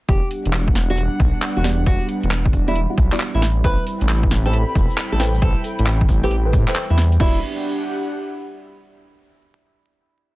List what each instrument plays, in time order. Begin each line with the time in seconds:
0.09 detuned saw bass E1, analog synth pad G3 B3 D4 F#5, synth stab B3 E4 F#4 G4 D5, nylon-string guitar G4, kick, closed hi-hat
0.31 open hi-hat
0.40 analog synth pad G3
0.45 detuned saw bass E1, analog synth pad F#5, closed hi-hat
0.53 clap, closed hi-hat
0.68 kick
0.75 detuned saw bass E1, snare, open hi-hat
0.90 synth stab B3 E4 F#4 G4 D5, nylon-string guitar F#4, closed hi-hat
0.98 closed hi-hat
1.20 detuned saw bass B1, kick, open hi-hat
1.42 clap, closed hi-hat
1.57 detuned saw bass E1, nylon-string guitar F#4
1.64 synth stab B3 E4 F#4 G4 D5, snare, open hi-hat
1.86 detuned saw bass E1, synth stab B3 E4 F#4 G4 D5, nylon-string guitar F#4, kick, closed hi-hat
2.09 open hi-hat
2.23 detuned saw bass E1, closed hi-hat
2.31 clap, closed hi-hat
2.46 kick
2.53 detuned saw bass E1, kick, open hi-hat
2.68 synth stab B3 E4 F#4 G4 D5, nylon-string guitar E4, closed hi-hat
2.75 closed hi-hat
2.90 synth stab B3 E4 F#4 G4 F#5
2.98 detuned saw bass B1, kick, open hi-hat
3.12 synth stab B3 E4 F#4 G4 D5, clap
3.20 clap, closed hi-hat
3.34 detuned saw bass A1, nylon-string guitar E4
3.42 analog synth pad C4 E4, snare, open hi-hat
3.64 detuned saw bass A1, synth stab E4 A4 B4 C5 G5, nylon-string guitar B4, kick, closed hi-hat, shaker
3.79 analog synth pad B5
3.87 open hi-hat, shaker
4.01 detuned saw bass A1, closed hi-hat, shaker
4.08 analog synth pad G5, clap, closed hi-hat, shaker
4.23 kick
4.30 detuned saw bass A1, snare, open hi-hat, shaker
4.45 synth stab E4 A4 B4 C5 G5, nylon-string guitar A4, closed hi-hat, shaker
4.53 closed hi-hat, shaker
4.75 detuned saw bass E1, kick, open hi-hat, shaker
4.90 shaker
4.98 clap, closed hi-hat
5.12 detuned saw bass A1, nylon-string guitar A4
5.20 synth stab E4 A4 B4 C5 G5, snare, open hi-hat, shaker
5.34 shaker
5.42 detuned saw bass A1, synth stab E4 A4 B4 C5 G5, nylon-string guitar A4, kick, closed hi-hat
5.64 open hi-hat, shaker
5.79 detuned saw bass A1, closed hi-hat, shaker
5.86 clap, closed hi-hat, shaker
6.01 kick
6.09 detuned saw bass A1, kick, open hi-hat, shaker
6.23 synth stab E4 A4 B4 C5 G5, nylon-string guitar G4, closed hi-hat, shaker
6.31 closed hi-hat, shaker
6.46 synth stab E4 A4 B4 C5 G5
6.53 detuned saw bass A2, kick, open hi-hat, shaker
6.68 synth stab E4 A4 B4 C5 G5, clap, shaker
6.75 clap, closed hi-hat, shaker
6.90 detuned saw bass E2, nylon-string guitar E4
6.98 snare, open hi-hat, shaker
7.12 closed hi-hat, shaker
7.20 detuned saw bass E1, synth stab B3 E4 F#4 G4 D5, analog synth pad D4, nylon-string guitar E4, kick, crash
7.29 analog synth pad G4
7.36 analog synth pad F#5